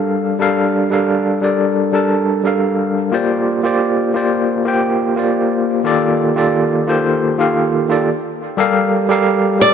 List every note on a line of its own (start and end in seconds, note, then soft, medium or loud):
0.00 0.36 G3 medium
0.00 0.36 D4 medium
0.00 0.37 A4 medium
0.00 0.37 A#4 medium
0.00 0.37 F5 medium
0.39 0.87 G3 medium
0.39 0.87 D4 medium
0.39 0.88 A4 medium
0.39 0.88 A#4 medium
0.39 0.88 F5 medium
0.90 1.38 G3 medium
0.90 1.38 D4 medium
0.90 1.39 A4 medium
0.90 1.39 A#4 medium
0.90 1.40 F5 medium
1.41 1.89 G3 medium
1.41 1.90 D4 medium
1.41 1.90 A4 medium
1.41 1.90 A#4 medium
1.41 1.91 D5 medium
1.92 2.40 G3 medium
1.92 2.41 D4 medium
1.92 2.41 A4 medium
1.92 2.41 A#4 medium
1.92 2.42 A5 medium
2.44 3.08 G3 medium
2.44 3.09 D4 medium
2.44 3.09 A4 medium
2.44 3.10 A#4 medium
2.44 3.10 F5 medium
3.12 3.60 A#3 medium
3.12 3.60 F4 medium
3.12 3.60 G4 medium
3.12 3.61 C5 medium
3.12 3.61 D5 medium
3.63 4.11 A#3 medium
3.63 4.11 F4 medium
3.63 4.12 G4 medium
3.63 4.12 C5 medium
3.63 4.12 D5 medium
4.14 4.62 A#3 medium
4.14 4.62 F4 medium
4.14 4.63 G4 medium
4.14 4.63 C5 medium
4.14 4.63 D5 medium
4.65 5.13 A#3 medium
4.65 5.13 F4 medium
4.65 5.14 G4 medium
4.65 5.14 C5 medium
4.65 5.14 G5 medium
5.16 5.81 A#3 medium
5.16 5.81 F4 medium
5.16 5.82 G4 medium
5.16 5.82 C5 medium
5.16 5.83 D5 medium
5.84 6.32 D#3 medium
5.84 6.32 A#3 medium
5.84 6.33 F4 medium
5.84 6.33 G4 medium
5.84 6.33 A4 medium
5.84 6.34 D5 loud
6.35 6.83 D#3 medium
6.35 6.84 A#3 medium
6.35 6.84 F4 medium
6.35 6.84 G4 medium
6.35 6.84 A4 medium
6.35 6.85 D5 medium
6.86 7.35 D#3 medium
6.86 7.35 A#3 medium
6.86 7.35 F4 medium
6.86 7.35 G4 medium
6.86 7.36 A4 medium
6.86 7.36 C5 medium
7.38 7.86 D#3 medium
7.38 7.86 A#3 medium
7.38 7.86 F4 medium
7.38 7.86 G4 medium
7.38 7.87 A4 medium
7.38 7.87 F5 medium
7.89 8.08 D#3 medium
7.89 8.08 A#3 medium
7.89 8.08 F4 medium
7.89 8.09 G4 medium
7.89 8.09 A4 medium
7.89 8.09 D5 medium
8.57 9.05 G3 medium
8.57 9.05 G4 medium
8.57 9.06 A4 medium
8.57 9.06 A#4 medium
8.57 9.07 F5 loud
9.09 9.56 G3 medium
9.09 9.57 G4 medium
9.09 9.57 A4 medium
9.09 9.57 A#4 medium
9.09 9.58 F5 loud
9.59 9.74 G3 medium
9.59 9.74 G4 medium
9.59 9.74 A4 medium
9.59 9.74 A#4 medium
9.59 9.74 D5 loud
9.59 9.74 D5 medium